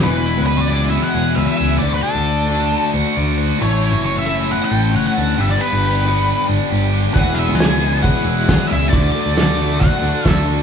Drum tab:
HH |----------------|----------------|----------------|----------------|
SD |----------------|----------------|----------------|----------------|
BD |----------------|----------------|----------------|----------------|

HH |x---x---x---x---|x---x---x---x---|
SD |----o-------o---|----oo------o---|
BD |o-------o---o---|o-------o---o---|